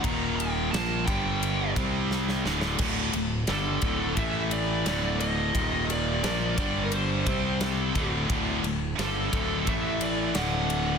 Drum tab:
CC |----------------|x---------------|----------------|----------------|
RD |x-x-x-x-x-x-----|x-x-x-x-x-x-x-x-|x-x-x-x-x-x-x-x-|x-x-x-x-x-x-x-x-|
SD |----o-------oooo|----o-------o---|----o-------o---|----o-------o---|
BD |o-----o---o-----|o-----o-o-------|o-----o---o---o-|o-----o-o-------|